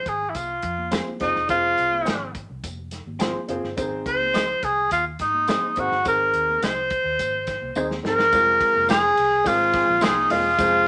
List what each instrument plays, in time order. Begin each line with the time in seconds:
0.06 fingered electric bass G#1, tenor saxophone G#4, kick, closed hi-hat
0.22 low conga
0.29 tenor saxophone E4
0.35 fingered electric bass C2, tenor saxophone F4, kick, closed hi-hat, tambourine, high conga
0.62 fingered electric bass F2, kick, closed hi-hat
0.78 high conga
0.91 grand piano C4 F4 G#4 C5, clean electric guitar C4 F4 G#4 C5, snare, closed hi-hat, tambourine
1.08 high conga
1.20 fingered electric bass F1, grand piano C4 F4 G#4 C5, tenor saxophone D#4, kick, snare, closed hi-hat
1.35 fingered electric bass E1, snare
1.48 fingered electric bass F1, grand piano C4 F4 G#4 C5, tenor saxophone F4, kick, closed hi-hat, tambourine, low conga
1.64 muted conga
1.78 fingered electric bass C2, closed hi-hat
1.92 high conga
2.05 fingered electric bass G#1, clean electric guitar C4 F4 G#4 C5, snare, closed hi-hat, tambourine
2.21 muted conga
2.35 kick, closed hi-hat
2.49 fingered electric bass C2, low conga
2.63 fingered electric bass F1, kick, closed hi-hat, tambourine, muted conga, high conga
2.79 muted conga
2.91 snare, closed hi-hat
3.06 fingered electric bass G#1, high conga
3.19 fingered electric bass G#1, clean electric guitar C4 F4 G#4 C5, grand piano C4 F4 G#4 C5, snare, closed hi-hat, tambourine
3.36 muted conga, high conga
3.48 fingered electric bass F#1, grand piano C4 F4 G#4 C5, closed hi-hat
3.62 fingered electric bass G1, snare
3.77 fingered electric bass G#1, grand piano C4 D#4 G#4 C5, kick, closed hi-hat, tambourine, muted conga, low conga
3.93 muted conga
4.06 fingered electric bass C#2, tenor saxophone C5, kick, closed hi-hat
4.21 high conga
4.34 clean electric guitar C4 D#4 G#4 C5, snare, closed hi-hat, tambourine
4.63 fingered electric bass C2, tenor saxophone G#4, kick, closed hi-hat
4.78 low conga
4.91 fingered electric bass D#2, tenor saxophone F4, kick, closed hi-hat, tambourine, muted conga, high conga
5.19 fingered electric bass G#2, tenor saxophone D#4, kick, snare, closed hi-hat
5.34 high conga
5.48 grand piano C4 D#4 G#4 D#5, clean electric guitar C4 D#4 G#4 C5, snare, closed hi-hat, tambourine
5.64 muted conga, high conga
5.76 fingered electric bass G#1, grand piano C4 D#4 G#4 C5, tenor saxophone F#4, kick, closed hi-hat
5.91 fingered electric bass G1, snare
6.04 fingered electric bass G#1, grand piano C4 D#4 G#4 C5, tenor saxophone A#4, kick, closed hi-hat, tambourine, low conga
6.21 muted conga
6.33 fingered electric bass D#2, closed hi-hat
6.48 high conga
6.62 clean electric guitar C4 D#4 G#4 C5, tenor saxophone C5, snare, closed hi-hat, tambourine
6.90 kick, closed hi-hat
7.04 fingered electric bass D#2, low conga
7.19 fingered electric bass G#1, kick, closed hi-hat, tambourine, high conga
7.47 kick, snare, closed hi-hat
7.61 fingered electric bass C2, high conga
7.75 fingered electric bass D#2, grand piano C4 D#4 G#4 C5, clean electric guitar C4 D#4 G#4 C5, tambourine
7.90 snare, high conga
8.03 fingered electric bass G#2, grand piano C4 D#4 G#4 C5, vibraphone A#4, tenor saxophone A#4, snare, low conga
8.19 snare
8.32 fingered electric bass F1, grand piano G#3 C4 F4 G#4 C5, kick, ride, tambourine, muted conga, low conga
8.47 muted conga
8.61 kick, ride
8.75 fingered electric bass F1, high conga
8.89 clean electric guitar C4 F4 G#4 C5, vibraphone G#4, tenor saxophone G#4, snare, ride, tambourine, muted conga
9.17 fingered electric bass C2, ride
9.31 low conga
9.44 fingered electric bass G#1, grand piano G#3 C4 F4 G#4 C5, vibraphone F4, tenor saxophone F4, kick, ride, tambourine
9.60 muted conga
9.73 horn section C4 F4 G#4, kick, snare, ride
9.87 fingered electric bass A#1, high conga
10.01 fingered electric bass C2, clean electric guitar C4 F4 G#4 C5, horn section C4 F4 G#4, tenor saxophone D#4, snare, ride, tambourine, muted conga
10.17 muted conga, high conga
10.30 fingered electric bass E1, grand piano G#3 C4 F4 G#4 D#5, vibraphone F4, tenor saxophone F4, snare, open hi-hat, ride
10.58 fingered electric bass F1, grand piano G#3 C4 F4 G#4 C5, kick, hi-hat pedal, ride, tambourine, muted conga, low conga